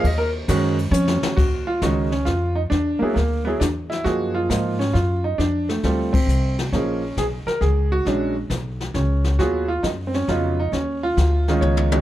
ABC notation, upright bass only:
X:1
M:3/4
L:1/8
Q:"Swing" 1/4=135
K:Ebm
V:1 name="Upright bass" clef=bass
E,,2 G,,2 F,, z | E,,2 D,,2 F,,2 | =E,, z =D,,2 E,,2 | G,,2 A,,2 G,,2 |
F,,2 =D,,2 =C,,2 | B,,,2 C,, z D,,2 | B,,,2 C,,2 ^C,,2 | E,,2 G,,2 F,,2 |
E,,2 =D,,2 _D,,2 |]